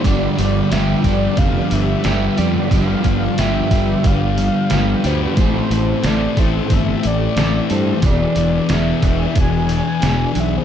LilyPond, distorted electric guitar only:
\new Staff \with { instrumentName = "Distorted electric guitar" } { \clef bass \time 4/4 \key g \mixolydian \tempo 4 = 90 <g, d g>8 <d g>8 <g, d g>8 <d g>8 <g, d g>8 <d g>8 <g, d g>8 <d g>8 | <g, d g>8 <d g>8 <g, d g>8 <d g>8 <g, d g>8 <d g>8 <g, d g>8 <d g>8 | <a, e a>8 <e a>8 <a, e a>8 <e a>8 <a, e a>8 <e a>8 <a, e a>8 <e a>8 | <e, b, e>8 <b, e>8 <e, b, e>8 <b, e>8 <e, b, e>8 <b, e>8 <e, b, e>8 <b, e>8 | }